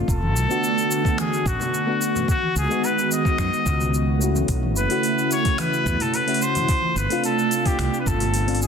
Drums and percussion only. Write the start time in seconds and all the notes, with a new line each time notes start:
0.08 kick, shaker
0.23 high conga
0.36 shaker
0.51 shaker
0.64 shaker
0.78 shaker
0.91 shaker
1.05 kick, shaker
1.18 finger snap, high conga, shaker
1.33 shaker
1.46 kick, shaker
1.60 low conga, shaker
1.74 shaker
2.02 shaker
2.16 high conga, low conga, shaker
2.28 kick, shaker
2.42 high conga
2.57 shaker
2.71 shaker
2.84 shaker
2.98 shaker
3.12 shaker
3.25 kick, shaker
3.38 finger snap, kick, shaker
3.53 shaker
3.66 kick, shaker
3.81 low conga, shaker
3.94 shaker
4.22 shaker
4.35 high conga, low conga, shaker
4.48 kick, open hi-hat, shaker
4.63 high conga
4.76 shaker
4.90 open hi-hat, shaker
5.03 open hi-hat, shaker
5.18 shaker
5.31 open hi-hat, shaker
5.45 kick, open hi-hat, shaker
5.58 finger snap, open hi-hat, high conga, shaker
5.73 shaker
5.86 kick, shaker
6.00 open hi-hat, low conga, shaker
6.14 open hi-hat, shaker
6.28 open hi-hat
6.34 open hi-hat
6.42 shaker
6.55 open hi-hat, high conga, low conga, shaker
6.68 kick, open hi-hat, shaker
6.82 high conga
6.97 shaker
7.10 open hi-hat, shaker
7.24 open hi-hat, shaker
7.39 shaker
7.51 open hi-hat, shaker
7.65 kick, open hi-hat, shaker
7.79 finger snap, kick, open hi-hat, shaker
7.94 shaker
8.06 kick, shaker
8.20 open hi-hat, low conga, shaker
8.34 open hi-hat, shaker
8.48 open hi-hat
8.55 open hi-hat
8.62 shaker